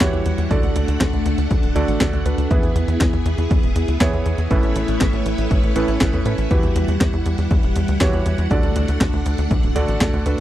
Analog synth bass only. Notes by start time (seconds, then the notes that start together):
0.01 E2
0.13 E2
0.26 E2
0.38 E2
0.51 D2
0.63 D2
0.76 D2
0.88 D2
1.01 D2
1.13 D2
1.26 D2
1.38 D2
1.51 D2
1.63 D1
1.76 D2
1.88 A1
2.01 D2
2.13 D2
2.25 D2
2.38 D2
2.51 E2
2.63 E2
2.75 E2
2.88 E2
3.01 E2
3.13 E2
3.26 E2
3.38 E2
3.51 E2
3.63 E1
3.76 E2
3.88 D2
4.01 E2
4.13 E2
4.26 E2
4.38 E2
4.51 A1
4.63 A1
4.76 A1
4.88 A1
5.01 A1
5.13 A1
5.26 A1
5.38 A1
5.51 A1
5.63 A1
5.76 A1
5.88 A1
6.01 A1
6.13 E2
6.26 A2
6.38 A1
6.51 E2
6.63 E2
6.76 E2
6.88 E2
7.01 E2
7.13 E2
7.26 E2
7.38 E2
7.51 E2
7.63 E1
7.76 E2
7.89 D2
8.01 E2
8.13 E2
8.26 E2
8.38 E2
8.51 D2
8.64 D2
8.76 D2
8.88 D2
9.01 D2
9.13 D2
9.26 D2
9.38 D2
9.51 D2
9.63 D1
9.76 D2
9.88 A1
10.01 D2
10.13 D2
10.26 D2